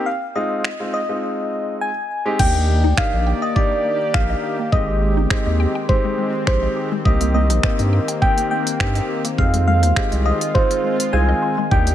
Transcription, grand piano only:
0.35 0.65 G#3 medium
0.35 0.65 C4 medium
0.35 0.66 D#4 medium
0.35 0.66 F4 medium
0.80 0.99 G#3 medium
0.80 0.99 C4 medium
0.80 1.00 D#4 medium
0.80 1.00 F4 medium
1.09 1.88 G#3 medium
1.09 1.88 C4 medium
1.09 1.88 D#4 medium
1.09 1.88 F4 medium
2.25 2.39 G#3 medium
2.25 2.39 C4 medium
2.25 2.38 D#4 medium
2.25 2.38 G4 medium
2.39 2.80 A#3 medium
2.39 2.80 D4 medium
2.39 2.80 D#4 medium
2.39 2.80 G4 medium
2.97 3.38 A#3 medium
2.97 3.38 D4 medium
2.97 3.38 D#4 medium
2.97 3.38 G4 medium
3.56 3.96 A#3 medium
3.56 3.96 D4 medium
3.56 3.96 D#4 medium
3.56 3.96 G4 medium
4.14 4.54 A#3 medium
4.14 4.55 D4 medium
4.14 4.55 D#4 medium
4.14 4.55 G4 medium
4.72 5.13 G#3 medium
4.72 5.13 C4 medium
4.72 5.13 D#4 medium
4.72 5.13 G4 medium
5.31 5.71 G#3 medium
5.31 5.71 C4 medium
5.31 5.71 D#4 medium
5.31 5.71 G4 medium
5.89 6.29 G#3 medium
5.89 6.29 C4 medium
5.89 6.29 D#4 medium
5.89 6.30 G4 medium
6.47 6.87 G#3 medium
6.47 6.88 C4 medium
6.47 6.88 D#4 medium
6.47 6.88 G4 medium
7.05 7.46 A#3 medium
7.05 7.46 C4 medium
7.05 7.46 D#4 medium
7.05 7.46 G4 medium
7.63 8.04 A#3 medium
7.63 8.04 C4 medium
7.63 8.04 D#4 medium
7.63 8.04 G4 medium
8.22 8.62 A#3 medium
8.22 8.62 C4 medium
8.22 8.62 D#4 medium
8.22 8.62 G4 medium
8.80 9.20 A#3 medium
8.80 9.21 C4 medium
8.80 9.21 D#4 medium
8.80 9.21 G4 medium
9.38 9.79 G#3 medium
9.38 9.79 C4 medium
9.38 9.79 D#4 medium
9.38 9.79 F4 medium
9.96 10.37 G#3 medium
9.96 10.37 C4 medium
9.96 10.37 D#4 medium
9.96 10.37 G4 medium
10.55 10.95 G#3 medium
10.55 10.95 C4 medium
10.55 10.95 D#4 medium
10.55 10.95 F4 medium
11.13 11.53 G#3 medium
11.13 11.54 C4 medium
11.13 11.54 D#4 medium
11.13 11.54 F4 medium
11.71 11.95 A#3 medium
11.71 11.95 D4 medium
11.71 11.95 D#4 medium
11.71 11.95 G4 medium

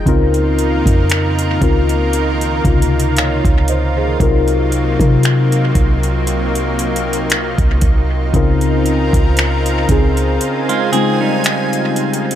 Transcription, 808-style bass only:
0.06 0.83 C#2 loud
0.86 1.58 F2 loud
1.62 2.61 C#2 loud
2.65 3.41 C#2 loud
3.45 4.17 C#2 loud
4.20 4.97 C2 loud
5.00 5.72 C3 loud
5.75 7.54 C2 medium
7.58 7.81 C2 loud
7.82 8.32 C2 medium
8.34 9.10 C#2 loud
9.13 9.86 C#2 loud
9.89 10.39 C#2 loud

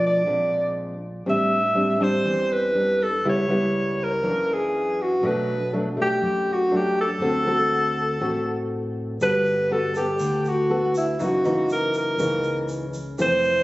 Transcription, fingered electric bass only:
0.00 0.23 B1 medium
0.27 1.22 A#1 medium
1.27 2.22 A1 medium
2.26 3.21 E2 medium
3.25 4.20 C#2 medium
4.24 5.19 F#2 medium
5.23 6.18 B1 medium
6.23 7.18 F#2 medium
7.22 8.17 D2 medium
8.21 9.17 A1 medium
9.21 10.16 G1 medium
10.20 11.16 D2 medium
11.20 12.15 F#1 medium
12.19 13.15 C#2 medium
13.19 13.63 F1 medium

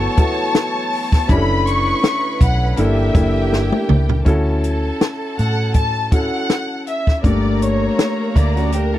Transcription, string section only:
0.00 1.26 C#5 medium
0.00 1.26 C#6 medium
1.28 2.74 B4 medium
1.28 2.75 B5 medium
2.78 4.24 G4 medium
2.78 4.24 G5 medium
4.24 6.82 A4 medium
4.24 6.82 A5 loud
7.23 8.99 A#3 medium
7.23 8.99 A#5 medium

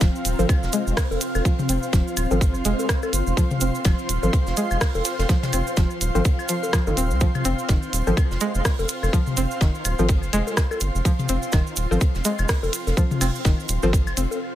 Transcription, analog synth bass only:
0.01 0.10 F1 loud
0.25 0.34 D#1 loud
0.39 0.46 G#1 loud
0.63 0.70 F1 medium
0.87 0.94 F1 medium
1.11 1.18 F1 medium
1.35 1.42 F1 medium
1.69 1.78 F1 loud
1.93 2.02 F1 loud
2.17 2.26 D#1 loud
2.31 2.57 G#1 loud
2.55 2.62 F1 medium
2.65 2.74 F1 medium
3.13 3.22 G1 medium
3.27 3.34 F1 loud
3.61 3.70 F1 medium
3.85 3.94 F1 loud
4.09 4.18 D#1 loud
4.23 4.30 G#1 medium
4.47 4.54 F1 medium
4.71 4.78 F1 medium
4.95 5.02 F1 medium
5.19 5.26 F1 medium
5.53 5.62 F1 loud
5.77 5.86 F1 loud
6.01 6.10 D#1 loud
6.15 6.22 G#1 loud
6.87 6.94 G1 medium
6.97 7.13 D#1 medium
7.11 7.25 C2 medium
7.45 7.54 F1 medium
7.69 7.78 F1 loud
7.93 8.02 D#1 loud
8.07 8.14 G#1 medium
8.31 8.38 F1 medium
8.55 8.62 F1 medium
8.79 8.86 F1 medium
9.03 9.10 F1 loud
9.37 9.46 F1 medium
9.61 9.70 F1 loud
9.85 9.94 D#1 loud
9.99 10.25 G#1 medium
10.23 10.30 F1 medium
10.33 10.42 F1 medium
10.81 10.90 G1 medium
10.95 11.02 F1 medium
11.29 11.38 F1 medium
11.53 11.62 F1 loud
11.77 11.86 D#1 loud
11.91 11.98 G#1 loud
12.15 12.22 F1 medium
12.39 12.46 F1 medium
12.63 12.70 F1 medium
12.87 12.94 F1 loud
13.21 13.30 F1 medium
13.45 13.54 F1 loud
13.69 13.78 D#1 loud
13.83 14.09 G#1 medium
14.07 14.14 F1 medium
14.17 14.26 F1 medium

